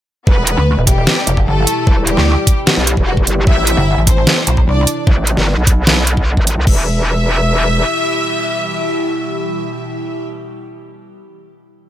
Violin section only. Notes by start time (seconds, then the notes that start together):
0.27 B3 B4
0.87 G3 G4
1.47 A3 A4
2.07 G3 G4
2.67 F#4
3.07 F#4
3.47 E4 E5
4.07 C4 C5
4.67 D4 D5
6.67 E5